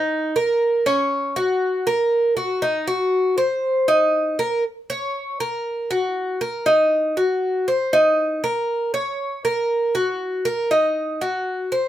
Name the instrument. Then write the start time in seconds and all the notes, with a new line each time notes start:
cuban tres
Already playing: D#4
0.36 A#4
0.86 C#4
1.36 F#4
1.87 A#4
2.37 F#4
2.62 D#4
2.87 F#4
3.38 C5
3.88 D#4
4.39 A#4
4.90 C#5
5.40 A#4
5.91 F#4
6.41 A#4
6.66 D#4
7.17 F#4
7.68 C5
7.93 D#4
8.44 A#4
8.94 C#5
9.45 A#4
9.95 F#4
10.45 A#4
10.71 D#4
11.21 F#4
11.72 C5